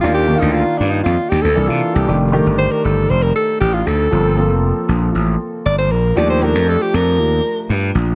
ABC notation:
X:1
M:4/4
L:1/16
Q:1/4=118
K:Eblyd
V:1 name="Alto saxophone"
F G2 E F2 D E F2 G A2 F2 G- | G z3 c B A2 c B A2 G F A2- | A4 z8 d c B2 | d c B2 A G B6 z4 |]
V:2 name="Grand piano"
[E,B,DF]2 [E,B,DEF]6 z4 [=E,B,DA]4 | [E,A,DG]2 [E,A,DG]6 z8 | [F,B,CA]2 [F,B,CA]6 z8 | [F,A,DG]2 [F,A,DG]6 z8 |]
V:3 name="Slap bass" clef=bass
E,,3 D,,2 z G,,2 F,, z E,, D,, C,, C, z C,, | F,,,3 G,,,2 z G,,,2 F,,,2 z2 A,,,2 D,,2 | G,,,3 F,,,2 z B,,,2 A,,,2 z2 G,,,2 B,,,2 | E,,3 F,,2 z F,,2 E,,2 z2 G,,2 B,,,2 |]